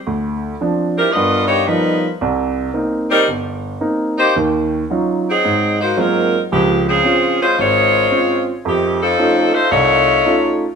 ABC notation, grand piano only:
X:1
M:4/4
L:1/8
Q:"Swing" 1/4=112
K:Dblyd
V:1 name="Grand piano"
=D,,2 [F,C=D] z [G,,=B,]2 [F,G,B,^D] z | [C,,C,]2 [B,CE] z G,,,2 [B,CE] z | [E,,E,]2 [_G,DEF] z A,,2 [G,A,B,CF] z | [D,,F,]2 [CDF] z A,,,2 [CDF] z |
F,,2 [=A,DEF] z C,,2 [A,DEF] z |]